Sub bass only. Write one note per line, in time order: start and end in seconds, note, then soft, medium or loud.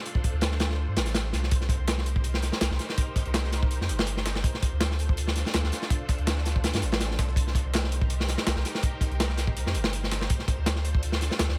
0.33 0.86 D2 loud
0.88 0.98 G2 medium
0.96 1.32 A1 medium
1.33 1.78 C2 medium
1.79 2.51 C2 loud
2.61 2.70 C2 loud
2.71 2.79 C2 loud
3.26 3.79 C2 loud
3.81 3.91 F2 medium
3.89 4.43 G1 medium
4.72 5.44 D2 loud
5.54 5.63 D2 loud
5.64 5.71 D2 loud
6.18 6.72 D2 loud
6.73 6.84 G2 medium
6.82 7.18 A1 medium
7.19 7.64 C2 medium
7.65 8.36 C2 loud
8.47 8.55 C2 loud
8.56 8.64 C2 loud
9.11 9.64 C2 loud
9.66 9.76 F2 medium
9.75 10.28 G1 medium
10.58 11.29 D2 loud
11.39 11.48 D2 loud
11.49 11.57 D2 loud